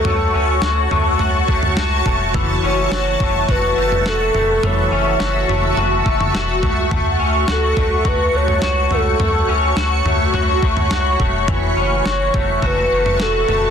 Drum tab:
SD |----o-------o---|----o-------o---|----o-------o---|----o-------o---|
FT |o-----o-o--o--o-|o-----o-o--o--o-|o-----o-o--o--o-|o-----o-o--o--o-|
BD |----------o---o-|o-----o-o-------|----------o---o-|o-----o-o-------|

SD |----o-------o---|----o-------o---|
FT |o-----o-o--o--o-|o-----o-o--o--o-|
BD |----------o---o-|o-----o-o-------|